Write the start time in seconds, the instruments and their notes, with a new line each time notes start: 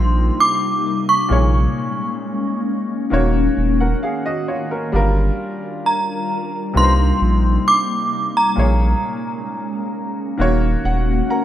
Already playing: sub bass A#1, grand piano C3 A#3 D#4 C5, ambient pad C3 G3 A#3 D#4, synth bell C6
0.40 synth bell D6
1.09 synth bell C#6
1.29 sub bass A#1, grand piano A#2 A#3 G#4 C#5, ambient pad G#3 A#3 C#4
3.10 sub bass D#1, grand piano D#3 A#3 F#4 C#5, ambient pad D#3 F#4
3.58 sub bass D#1
3.80 grand piano A#4 F#5
4.03 grand piano G#4 F5
4.26 grand piano F#4 D#5
4.48 grand piano F4 C#5
4.71 grand piano C#4 A#4
4.92 sub bass G1, grand piano G3 D4 F4 A#4, ambient pad G3 D4 F4 A#4
5.86 synth bell A#5
6.74 sub bass C2, grand piano C3 A#3 D#4 B4, ambient pad C3 A#3 D#4, synth bell C6
6.84 grand piano C5
7.22 sub bass A#1
7.68 synth bell D6
8.37 synth bell A#5
8.56 sub bass A#1, grand piano A#2 A#3 G#4 C#5, ambient pad G#3 A#3 C#4
10.38 sub bass D#1, grand piano D#3 A#3 F#4 C#5, ambient pad D#3 A#3 C#4 F#4
10.85 sub bass D#1, grand piano F#5
11.30 grand piano A#4 F#5 A#5